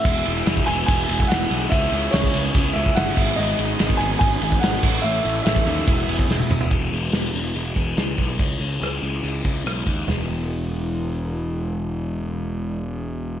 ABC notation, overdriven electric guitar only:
X:1
M:4/4
L:1/8
Q:1/4=143
K:E
V:1 name="Overdriven electric guitar" clef=bass
[E,G,B,E] [E,G,B,E] [E,G,B,E] [E,G,B,E] [E,G,B,E] [E,G,B,E] [E,G,B,E] [E,G,B,E] | [C,G,CE] [C,G,CE] [C,G,CE] [C,G,CE] [C,G,CE] [C,G,CE] [C,G,CE] [G,,D,G,B,D] | [G,,D,G,B,D] [G,,D,G,B,D] [G,,D,G,B,D] [G,,D,G,B,D] [G,,D,G,B,D] [G,,D,G,B,D] [G,,D,G,B,D] [A,,E,A,CE] | [A,,E,A,CE] [A,,E,A,CE] [A,,E,A,CE] [A,,E,A,CE] [E,G,B,E] [E,G,B,E] [E,G,B,E] [E,G,B,E] |
[E,G,B,E] [E,G,B,E] [E,G,B,E] [E,G,B,E] [E,G,B,E] [E,G,B,E] [E,G,B,E] [E,G,B,E] | [C,G,CE] [C,G,CE] [C,G,CE] [C,G,CE] [C,G,CE] [C,G,CE] [C,G,CE] [C,G,CE] | [E,G,B,E]8- | [E,G,B,E]8 |]